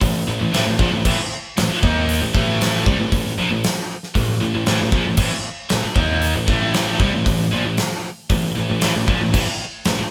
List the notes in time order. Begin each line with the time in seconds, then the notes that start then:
0.01 A1 A2 E3, kick, open hi-hat
0.27 A1 A2 E3
0.40 A1 A2 E3
0.52 A1 A2 E3, snare, open hi-hat
0.66 A1 A2 E3
0.78 A#1 A#2 F3, kick
0.92 A1 A2 E3
1.05 A1 A2 E3, kick, crash
1.19 muted distorted electric guitar stroke, muted picked electric bass stroke
1.57 A1 A2 E3, snare, open hi-hat
1.70 muted distorted electric guitar stroke, muted picked electric bass stroke
1.82 D#2 D#3 A#3 D#4, kick
2.09 open hi-hat
2.21 A1 A2 E3
2.34 A1 A2 E3 A3, kick
2.61 snare, open hi-hat
2.86 C2 C3 G3, kick
2.99 A1 A2 E3
3.12 A1 A2 E3, kick, open hi-hat
3.38 A#1 A#2 F3
3.51 A1 A2 E3
3.64 snare, open hi-hat
4.03 snare
4.14 A1 A2 E3, kick, open hi-hat
4.40 A1 A2 E3
4.54 A1 A2 E3
4.66 A1 A2 E3, snare, open hi-hat
4.80 A1 A2 E3
4.92 A#1 A#2 F3, kick
5.05 A1 A2 E3
5.17 A1 A2 E3, kick, crash
5.31 muted distorted electric guitar stroke, muted picked electric bass stroke
5.69 A1 A2 E3, snare, open hi-hat
5.82 muted distorted electric guitar stroke, muted picked electric bass stroke
5.94 D#2 D#3 A#3 D#4, kick
5.99 D#4
6.22 open hi-hat
6.35 A1 A2 E3
6.47 A1 A2 E3 A3, kick
6.52 A3
6.74 snare, open hi-hat
6.99 C2 C3 G3, kick
7.13 A1 A2 E3
7.25 A1 A2 E3, kick, open hi-hat
7.51 A#1 A#2 F3
7.65 A1 A2 E3
7.77 snare, open hi-hat
8.30 A1 A2 E3, kick, open hi-hat
8.55 A1 A2 E3
8.69 A1 A2 E3
8.80 A1 A2 E3, snare, open hi-hat
8.94 A1 A2 E3
9.07 A#1 A#2 F3, kick
9.21 A1 A2 E3
9.33 A1 A2 E3, kick, crash
9.46 muted distorted electric guitar stroke, muted picked electric bass stroke
9.85 A1 A2 E3, snare, open hi-hat
9.98 muted distorted electric guitar stroke, muted picked electric bass stroke